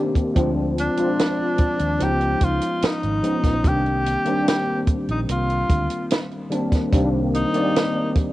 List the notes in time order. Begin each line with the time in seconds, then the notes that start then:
Already playing: D#3 A#3 C4 D4 G4
0.16 kick, closed hi-hat
0.34 D2 F3 G#3 C4 D4 F4, kick, closed hi-hat
0.78 D4, closed hi-hat
0.96 F3 G#3 C4 D4 F4, closed hi-hat
1.19 snare, closed hi-hat
1.58 muted fingered electric bass stroke, kick, closed hi-hat
1.79 D#2, closed hi-hat
1.99 C#2 F3 G#3 B3 C#4 D#4, closed hi-hat
2.04 G4
2.21 closed hi-hat
2.41 C#2 F4, kick, closed hi-hat
2.61 closed hi-hat
2.82 D#4, muted fingered electric bass stroke, snare, closed hi-hat
3.03 G#1, closed hi-hat
3.22 F3 G#3 B3 C#4 D#4, closed hi-hat
3.44 A#1, kick, snare, closed hi-hat
3.63 C2 D#3 G3 A#3 C4 D4, kick, closed hi-hat
3.68 G4
3.86 closed hi-hat
4.06 closed hi-hat
4.25 D#3 G3 A#3 C4 D4, closed hi-hat
4.48 G4, snare, closed hi-hat
4.87 muted fingered electric bass stroke, kick, closed hi-hat
5.08 A#1 D#4, closed hi-hat
5.29 C2 F4, closed hi-hat
5.50 closed hi-hat
5.70 D2, kick, closed hi-hat
5.90 closed hi-hat
6.11 snare, closed hi-hat
6.31 closed hi-hat
6.50 D#3 G3 A#3 C4 D4, closed hi-hat
6.72 kick, snare, closed hi-hat
6.91 C2 D#3 G3 A#3 C4 D4, kick, closed hi-hat
7.34 D#4, closed hi-hat
7.53 D#3 G3 A#3 C4 D5, closed hi-hat
7.76 snare, closed hi-hat
8.15 muted fingered electric bass stroke, kick, closed hi-hat